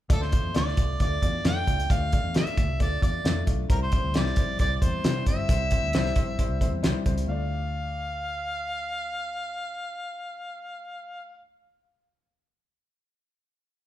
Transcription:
0.09 D2 A3 D4 F4 A4 D5, kick, closed hi-hat
0.22 C5, snare
0.31 A3 D4 F4 D5, kick, closed hi-hat
0.44 E2
0.54 D2 A3 D4 F4 D5, snare, closed hi-hat
0.68 snare
0.77 C2 A3 D4 F4 D5, kick, closed hi-hat
1.00 D2 A3 D4 F4 D5, kick, closed hi-hat
1.22 E2 A3 D4 F4 D5, kick, closed hi-hat
1.44 F2 A3 D4 F4 D5 G5, snare, closed hi-hat
1.67 C#2 A3 D4 F4 D5, kick, closed hi-hat
1.80 closed hi-hat
1.90 D2 A3 D4 F4 D5 F5, kick, closed hi-hat
2.12 A3 D4 F4 D5, kick, closed hi-hat
2.24 E2
2.34 A3 D4 F4 D5 E5, snare, closed hi-hat
2.47 closed hi-hat
2.57 D2 A3 D4 F4 D5, kick, closed hi-hat
2.68 C2
2.79 D2 A3 D4 F4 D5, kick, closed hi-hat
3.01 E2 A3 D4 F4 D5, kick, closed hi-hat
3.24 F2 A3 D4 F4 D5, snare, closed hi-hat
3.47 B1 A3 D4 F4 D5, kick, closed hi-hat
3.69 C2 G3 C4 E4 A#4 C5, kick, closed hi-hat
3.82 C5
3.92 G3 C4 E4 C5, kick, closed hi-hat
4.03 D2
4.14 C2 G3 C4 E4 C5 D5, snare, closed hi-hat
4.26 snare
4.36 A#1 G3 C4 E4 C5, kick, closed hi-hat
4.59 C2 G3 C4 E4 C5 D5, kick, closed hi-hat
4.76 D5
4.82 E2 G3 C4 E4 C5, kick, closed hi-hat
5.04 C3 G3 C4 E4 C5, snare, closed hi-hat
5.26 G1 G3 C4 E4 C5 E5, kick, closed hi-hat
5.49 C2 G3 C4 E4 C5, kick, closed hi-hat
5.71 G3 C4 E4 C5, kick, closed hi-hat
5.83 D2
5.93 C2 G3 C4 E4 C5, snare, closed hi-hat
6.06 snare
6.16 A#1 G3 C4 E4 C5, kick, closed hi-hat
6.39 G3 C4 E4 C5, kick, closed hi-hat
6.49 C2
6.61 D2 G3 C4 E4 C5, kick, closed hi-hat
6.72 E2
6.83 C2 G3 C4 E4 C5, snare, closed hi-hat
7.06 C#2 G3 C4 E4 C5, kick, closed hi-hat
7.18 closed hi-hat
7.27 D2 A3 D4 F4 F5
7.31 D5

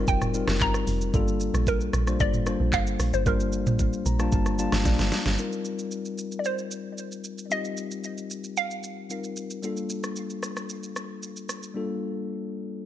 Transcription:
Already playing: G3 C4 D#4 F4 F#4 G4 A#4 C5
0.08 F1 G5, kick, shaker
0.21 cross-stick, mid tom, shaker
0.34 G3 C4 D#4 F4 A#4, shaker
0.48 F1, cross-stick, snare
0.61 G1 A#5, kick, clap, shaker
0.74 cross-stick, shaker
0.87 F1, open hi-hat, shaker
1.01 shaker
1.14 G1 G3 A#3 D4 F4 A4, kick, shaker
1.28 shaker
1.40 shaker
1.54 A#1, cross-stick, shaker
1.67 A#4, kick, shaker
1.81 shaker
1.93 A#1, cross-stick, shaker
2.07 G3 A#3 D4 F4 C5, cross-stick, shaker
2.20 G1 D5, kick, shaker
2.34 mid tom, shaker
2.46 G3 A#3 D4 F4 C5, cross-stick, shaker
2.60 A#1
2.73 G1 F5, kick, clap, shaker
2.87 shaker
3.00 A#1, cross-stick, open hi-hat, shaker
3.13 G1 C5, shaker
3.26 G1 G3 A#3 D4 F4 A#4 C5, kick, shaker
3.40 shaker
3.53 shaker
3.66 A#1, mid tom, shaker
3.79 kick, shaker
3.93 shaker
4.06 A#1 A#5, shaker
4.19 G3 A#3 D4 F4 A5, cross-stick, shaker
4.32 G1 A5, kick, shaker
4.46 cross-stick, shaker
4.58 G3 A#3 D4 F4 F5 A5, shaker
4.72 G1, cross-stick, snare, shaker
4.85 A#1 D5, kick, snare, shaker
4.99 G1, snare, shaker
5.12 snare, open hi-hat, shaker
5.26 G1, snare, shaker
5.37 G3 C4 D#4 F4 A#4, shaker
5.52 shaker
5.65 shaker
5.79 shaker
5.91 shaker
6.05 shaker
6.18 shaker
6.32 shaker
6.39 D5
6.44 C5, shaker
6.58 shaker
6.71 shaker
6.98 shaker
7.12 shaker
7.24 shaker
7.38 shaker
7.50 G3 C4 D#4 F4 G4 D#5, shaker
7.65 shaker
7.77 shaker
7.91 shaker
8.04 shaker
8.18 shaker
8.30 shaker
8.44 shaker
8.57 F5, shaker
8.71 shaker
8.83 shaker
9.10 G3 C4 D#4 F4 A#4, shaker
9.24 shaker
9.36 shaker
9.50 shaker
9.62 G3 A#3 D4 F4 A4, shaker
9.77 shaker
9.90 shaker
10.04 cross-stick, shaker
10.16 shaker
10.30 shaker
10.43 cross-stick, shaker
10.57 cross-stick, shaker
10.69 shaker
10.83 shaker
10.96 cross-stick, shaker
11.23 shaker
11.36 shaker
11.49 cross-stick, shaker
11.63 shaker
11.74 G3 A#3 D4 F4 A4

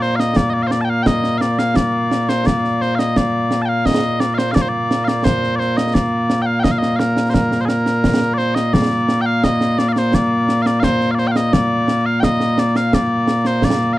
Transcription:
Already playing: A#2 A#3
0.02 C5, snare
0.16 D#5 F5, snare
0.36 D5, concert bass drum, snare
0.50 D5 D#5
0.63 F5
0.67 C5, snare
0.71 D5
0.81 G5 A5
0.90 F5
1.03 D#5 G5, concert bass drum, snare
1.24 snare
1.38 D5 F5, snare
1.59 F5, snare
1.76 D5, concert bass drum, snare
2.11 snare
2.29 C5, snare
2.46 D5, concert bass drum, snare
2.64 snare
2.81 C5, snare
2.95 D#5 F5, snare
3.16 D5, concert bass drum, snare
3.51 snare
3.62 G5 A5
3.69 F5
3.86 D#5, concert bass drum, snare
4.20 D5, snare
4.34 C5 F5
4.38 snare
4.51 D5 F5
4.56 concert bass drum, snare
4.61 C5
4.69 D5
4.91 snare
5.05 D5 F5, snare
5.24 C5, concert bass drum, snare
5.43 snare
5.56 C5 D5
5.60 snare
5.77 D#5, snare
5.94 D5, concert bass drum, snare
6.30 snare
6.42 G5
6.46 F5
6.60 G5
6.64 D#5, concert bass drum, snare
6.71 F5
6.78 D#5
6.82 snare
6.96 A#4 F5, snare
7.17 snare
7.30 C5
7.34 A#4, concert bass drum, snare
7.52 snare
7.61 C5
7.65 G#4 A#4, snare
7.86 snare
8.04 concert bass drum, snare
8.21 snare
8.34 D5
8.38 C5, snare
8.55 D#5, snare
8.74 D5, concert bass drum, snare
9.09 snare
9.21 G5
9.26 F5
9.44 D#5, concert bass drum, snare
9.61 snare
9.79 D5, snare
9.89 F5
9.93 D5, snare
9.98 C5
10.13 D5, concert bass drum, snare
10.49 snare
10.62 F5, snare
10.67 D5
10.80 C5 F5, concert bass drum, snare
11.01 snare
11.11 D5 F5
11.18 C5, snare
11.27 G5
11.31 F5
11.36 D#5, snare
11.53 D5, concert bass drum, snare
11.88 snare
12.06 F5
12.20 D#5 G5, concert bass drum, snare
12.40 snare
12.58 D5, snare
12.76 F5, snare
12.93 D5, concert bass drum, snare
13.28 snare
13.45 C5, snare
13.62 D5, concert bass drum, snare
13.80 snare
13.93 F5

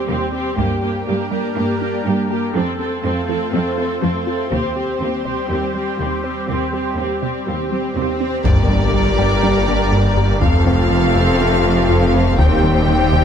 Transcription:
Already playing: G3 C4 G4 C5
0.09 D#2 C3 C4 G4
0.33 C4 G4
0.58 G2 G3 A#3 D4 G4 A#4, taiko
0.82 A#3 D4 G4
1.06 G2 A#3 G4
1.31 G3 A#3 G4
1.56 G2 A#3 D4 G4
1.81 A#3 D4 G4
2.05 G2 G3 A#3 G4
2.30 A#3 G4
2.55 F2 F3 A3 C4 F4 A4 C5
2.79 C4 A4
3.04 F2 C4 A4
3.28 F3 C4 A4
3.53 F2 C4 A4
3.77 C4 A4
4.02 F2 F3 C4 A4
4.27 C4 F4 A4
4.51 D#2 C3 G3 C4 G4, taiko
4.76 G3 C4 G4
5.01 D#2 C4 G4
5.25 C3 C4 G4, taiko
5.50 D#2 G3 C4 G4
5.74 G3 C4 G4
5.99 D#2 C3 C4 G4
6.24 C4 G4
6.48 D#2 C3 C4 G4, swell
6.73 G3 C4 G4
6.98 D#2 C4 G4
7.22 C3 C4 G4
7.47 D#2 G3 C4 G4
7.72 G3 C4 G4
7.96 D#2 C3 C4 G4
8.20 C4 G4
8.45 G1 G2 D3 G3 A#3 D4 G4 A#4 D5, taiko, impact
8.69 G3 D4
8.94 G3
9.18 G2 G3
9.43 G3 D4
9.68 G3 D4
9.92 G2 G3
10.17 G2 G4
10.41 F1 F2 C3 F3 A3 C4 F4 A4 C5 F5, taiko
10.66 F3 C4
10.91 F3
11.15 F2 F3
11.40 F3 C4
11.65 F3 C4
11.89 F2 F3
12.14 F2 F4
12.38 D#1 D#2 C3 D#3 G3 C4 G4 G5, taiko
12.63 D#3 G3
12.88 D#3
13.12 D#2 C3

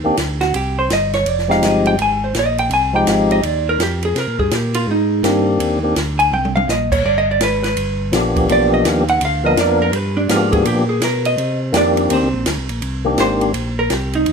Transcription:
0.04 D#2 D#3 A#3 C4 D4 G4
0.17 D2, snare, hi-hat pedal, ride
0.41 F#4, snare, ride
0.54 C2 G4, ride
0.79 C5
0.90 G1 D#5, snare, hi-hat pedal, ride
1.13 C#5, snare, ride
1.26 F1 D5, ride
1.39 snare
1.48 F3 G#3 C4 D#4 G4 F5, snare
1.62 G1 D#5, snare, hi-hat pedal, ride
1.86 G5, ride
1.98 G#1 G#5, ride
2.24 C5
2.35 A#1, snare, hi-hat pedal, ride
2.39 D#5
2.58 G5, ride
2.70 C2 G#5, ride
2.93 F3 G#3 C4 D#4 G4 G5
3.07 G#1 F5, snare, hi-hat pedal, ride
3.31 D#5, ride
3.43 D#2 D5, ride
3.69 A#4
3.79 F2 G4, snare, hi-hat pedal, ride
4.03 G#4, ride
4.15 C3 A#4, snare, ride
4.28 A#2
4.39 G2 G#4, kick
4.51 A#2 G4, snare, hi-hat pedal, ride
4.74 F4, ride
4.87 G#2 D#4
5.23 G2 D#3 A#3 C4 D4 G4, snare, hi-hat pedal, ride
5.59 D#2, ride
5.83 D#3 A#3 C4 D4 G4
5.96 D2, snare, hi-hat pedal, ride
6.19 G#5, ride
6.32 C2 G5, high tom
6.45 high tom
6.56 F5, high tom
6.68 A#1 D#5, snare, hi-hat pedal
6.92 C#5, kick, crash
7.05 G1 D5
7.18 D#5
7.31 D5
7.41 G#1 B4, snare, hi-hat pedal, ride
7.63 B4, snare, ride
7.76 G1, ride
8.12 A#1 F3 A#3 B3 D4 G4, snare, hi-hat pedal, ride
8.36 kick, ride
8.49 B1 F3 A#3 B3 D4 G4 D5, ride
8.74 D#5
8.84 D#2 F5, snare, hi-hat pedal, ride
9.08 F#5, ride
9.21 D2, ride
9.25 F5
9.44 F3 A#3 B3 D4 A#4 D#5
9.57 F2, snare, hi-hat pedal, ride
9.61 D5
9.82 A#4
9.92 G2 B4, ride
10.17 D4
10.29 G#2 F3 A#3 B3 D4 F4 G4, snare, hi-hat pedal, ride
10.53 G#4, kick, ride
10.65 A#2 G4, ride
10.89 G#4
11.01 B2 A#4, snare, hi-hat pedal, ride
11.25 D#5, ride
11.37 C3, ride
11.72 F2 D#3 A#3 C4 D4 G4, snare, hi-hat pedal, ride
11.77 D4 D5
11.97 ride
12.10 D#2 C4 C5, ride
12.22 C2
12.33 A#1
12.46 D2, snare, hi-hat pedal, ride
12.58 C2
12.69 A#1, ride
12.82 C2, ride
13.05 D#3 A#3 C4 D4 G4
13.18 G#1 C5, snare, hi-hat pedal, ride
13.41 ride
13.54 A#1, ride
13.79 A#4
13.90 C2 G4, snare, hi-hat pedal, ride
14.13 D#4, ride
14.26 D#2, ride

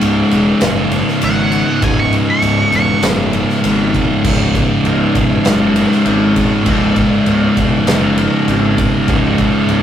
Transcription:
Already playing: C#2 G#2 C#3
0.01 C#1, ride
0.31 E1, ride
0.61 F#1 C#2 G#2, snare, ride
0.65 C#3
0.91 ride
1.08 snare
1.21 G#1 F#5, ride
1.52 ride
1.82 C#1 C#2 G#2 C#3 G#5, kick, ride
1.99 C#6
2.13 ride
2.30 C#6
2.42 C#1, ride
2.72 E1, ride
2.76 C#6
3.03 F#1 C#2 G#2 C#3, snare, ride
3.33 ride
3.49 snare
3.64 G#1, ride
3.94 kick, ride
4.24 C#1 C#2 G#2 C#3, kick, crash
4.55 kick, ride
4.83 C#1, ride
5.15 E1, kick, ride
5.45 F#1 C#2 G#2 C#3, snare, ride
5.76 ride
5.92 snare
6.05 G#1, ride
6.36 kick, ride
6.65 C#1 C#2 G#2 C#3, kick, ride
6.96 kick, ride
7.26 C#1, ride
7.57 E1, kick, ride
7.86 F#1 C#2 G#2, snare, ride
7.91 C#3
8.18 ride
8.47 G#1, ride
8.78 kick, ride
9.08 C#1 C#2 G#2 C#3, kick, ride
9.38 kick, ride
9.69 C#1, ride

